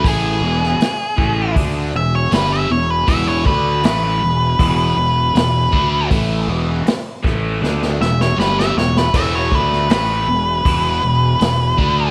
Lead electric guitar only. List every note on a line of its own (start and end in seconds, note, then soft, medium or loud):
0.08 1.54 G#4 medium
1.96 2.14 E5 medium
2.15 2.33 C#5 medium
2.34 2.52 B4 medium
2.52 2.70 E5 loud
2.72 2.90 C#5 medium
2.90 3.08 B4 medium
3.08 3.27 E5 loud
3.27 3.46 C#5 medium
3.47 3.83 B4 medium
3.86 6.08 B4 loud
8.02 8.20 E5 medium
8.21 8.39 C#5 medium
8.40 8.58 B4 medium
8.59 8.77 E5 medium
8.77 8.97 C#5 medium
8.97 9.15 B4 medium
9.16 9.34 E5 medium
9.35 9.55 C#5 medium
9.55 9.90 B4 medium
9.92 12.11 B4 medium